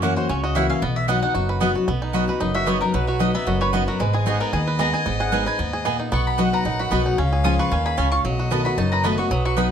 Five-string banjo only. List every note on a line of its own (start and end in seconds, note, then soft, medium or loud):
0.00 0.27 C#4 medium
0.00 0.17 F#4 medium
0.17 0.43 F#4 medium
0.29 0.67 C#4 medium
0.44 1.34 F#4 medium
0.56 0.82 E4 medium
0.70 0.82 C#4 medium
0.82 1.08 B3 medium
1.09 1.47 B3 medium
1.23 1.59 D#4 medium
1.35 1.73 F#4 medium
1.49 1.86 B4 medium
1.61 1.87 B3 medium
1.75 1.88 F#4 medium
1.88 2.67 B3 medium
2.02 2.40 D#4 medium
2.15 2.53 F#4 medium
2.29 3.61 B4 medium
2.41 2.82 D#4 medium
2.55 2.92 F#4 medium
2.67 3.34 B3 medium
2.82 3.20 D#4 medium
2.94 3.32 F#3 medium
3.08 3.45 F#4 medium
3.20 4.26 D#4 medium
3.35 3.73 B3 medium
3.47 3.85 F#4 medium
3.62 4.67 B4 medium
3.74 4.40 B3 medium
3.88 4.00 F#4 medium
4.00 4.38 G#3 medium
4.14 4.51 G#4 medium
4.27 5.32 D#4 medium
4.41 4.79 B3 medium
4.53 4.91 G#4 medium
4.68 5.46 B4 medium
4.79 5.05 B3 medium
4.93 5.19 G#4 medium
5.06 5.44 B3 medium
5.20 5.57 G#4 medium
5.32 5.71 D#4 medium
5.46 5.83 B4 medium
5.59 5.84 B3 medium
5.73 6.10 G#4 medium
5.85 6.11 B3 medium
6.00 6.12 D#4 medium
6.12 6.50 B3 medium
6.39 6.77 F#4 medium
6.53 6.90 B4 medium
6.66 7.04 D#4 medium
6.80 7.16 F#4 medium
6.92 7.18 B3 medium
7.06 7.18 D#4 medium
7.18 7.56 C#4 medium
7.33 7.69 G#4 medium
7.45 7.83 F4 medium
7.59 7.96 B4 medium
7.72 7.97 C#4 medium
7.86 8.22 G#4 medium
7.98 8.24 C#4 medium
8.12 8.24 F4 medium
8.25 9.31 F#3 medium
8.39 8.66 F#4 medium
8.51 8.92 B4 medium
8.66 9.19 F#4 medium
8.78 9.57 D#4 medium
8.93 9.71 B4 medium
9.04 9.71 B3 medium
9.19 9.45 F#4 medium
9.31 9.69 F#3 medium
9.46 9.71 F#4 medium
9.58 9.71 D#4 medium